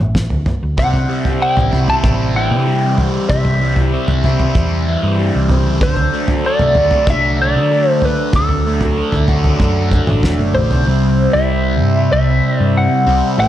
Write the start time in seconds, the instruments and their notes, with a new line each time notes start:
Already playing: lead electric guitar E5
0.00 picked electric bass A1
0.15 kick, snare, mid tom
0.30 picked electric bass D2, floor tom
0.46 floor tom, mid tom
0.63 picked electric bass D2
0.77 picked electric bass C2, distorted electric guitar C3, harmonium G3 E4 C5, lead electric guitar F#5, kick, floor tom
0.93 floor tom
1.09 distorted electric guitar G3
1.25 floor tom
1.40 distorted electric guitar C4, lead electric guitar G5
1.57 picked electric bass A1, floor tom
1.72 picked electric bass C2, distorted electric guitar E4, floor tom
1.78 lead electric guitar F#5
1.88 lead electric guitar A5, floor tom
2.03 picked electric bass A1, distorted electric guitar C4, kick, floor tom
2.35 distorted electric guitar E3, lead electric guitar G5
2.51 picked electric bass C3
2.67 distorted electric guitar G3
2.98 distorted electric guitar C4, lead electric guitar F#5, floor tom
3.30 picked electric bass C2, distorted electric guitar C3, lead electric guitar E5, kick, floor tom
3.45 floor tom
3.61 distorted electric guitar G3
3.76 floor tom
3.93 distorted electric guitar C4
4.08 picked electric bass C2, floor tom
4.24 picked electric bass C2, distorted electric guitar E4, floor tom
4.39 floor tom
4.55 picked electric bass E2, distorted electric guitar C4, kick, floor tom
4.88 distorted electric guitar E3
5.03 picked electric bass G2
5.18 distorted electric guitar G3
5.35 picked electric bass C2
5.49 distorted electric guitar C4, floor tom
5.66 picked electric bass C#2
5.81 picked electric bass D2, distorted electric guitar D3, harmonium F#3 D4 A4, lead electric guitar C5, kick, floor tom
5.97 floor tom
6.14 distorted electric guitar A3
6.28 floor tom
6.45 distorted electric guitar D4, lead electric guitar D5
6.59 picked electric bass C2, floor tom
6.75 picked electric bass D2, distorted electric guitar F#4, floor tom
6.91 floor tom
7.07 picked electric bass C2, distorted electric guitar D4, lead electric guitar E5, kick, floor tom
7.40 distorted electric guitar D3, lead electric guitar D5
7.55 picked electric bass D3
7.71 distorted electric guitar A3
7.91 lead electric guitar C5
8.02 distorted electric guitar D4, lead electric guitar B4, floor tom
8.33 picked electric bass D2, distorted electric guitar D3, lead electric guitar A4, kick, floor tom
8.49 floor tom
8.66 distorted electric guitar A3
8.81 floor tom
8.98 distorted electric guitar D4
9.12 picked electric bass D2, floor tom
9.28 picked electric bass D2, distorted electric guitar F#4, floor tom
9.44 floor tom
9.60 picked electric bass F#2, distorted electric guitar D4, kick, floor tom
9.91 distorted electric guitar D3, kick, floor tom
10.07 picked electric bass A1, mid tom
10.23 picked electric bass E1, distorted electric guitar A3, kick, snare
10.39 picked electric bass F#1, high tom
10.54 picked electric bass A1, distorted electric guitar D4, lead electric guitar C5, mid tom
10.71 picked electric bass B1, floor tom
10.86 picked electric bass C2, distorted electric guitar C3 G3 C4, harmonium G3 E4 C5
11.33 picked electric bass C2, lead electric guitar E5
11.82 picked electric bass G2
12.13 picked electric bass C2, lead electric guitar E5
12.58 picked electric bass G2, lead electric guitar D5
12.78 lead electric guitar F#5
13.07 picked electric bass C2, distorted electric guitar C3 G3 C4
13.37 picked electric bass A1, distorted electric guitar A2 E3 A3, harmonium A3 C5, lead electric guitar G5